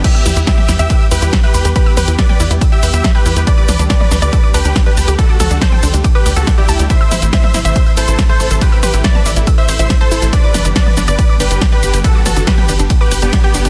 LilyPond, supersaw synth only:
\new Staff \with { instrumentName = "Supersaw synth" } { \time 4/4 \key e \minor \tempo 4 = 140 <g' e''>8. r16 <g' e''>8 r16 <g' e''>8 r16 <g' b'>8 r16 <g' b'>8 r16 | <g' b'>8 <g' b'>8 <b' d''>8 r8. <g' e''>8 <g' e''>8 <g' b'>8 r16 | <b' d''>8. r16 <b' d''>8 r16 <b' d''>8 r16 <g' b'>8 r16 <g' b'>8 r16 | <fis' a'>8 <fis' a'>8 <a' c''>8 r8. <g' b'>8 <fis' a'>8 <e' g'>8 r16 |
<c'' e''>8. r16 <c'' e''>8 r16 <c'' e''>8 r16 <a' c''>8 r16 <a' c''>8 r16 | <g' b'>8 <g' b'>8 <b' d''>8 r8. <c'' e''>8 <c'' e''>8 <a' c''>8 r16 | <b' d''>8. r16 <b' d''>8 r16 <b' d''>8 r16 <g' b'>8 r16 <g' b'>8 r16 | <fis' a'>8 <fis' a'>8 <g' b'>8 r8. <g' b'>8 <b g'>8 <b g'>8 r16 | }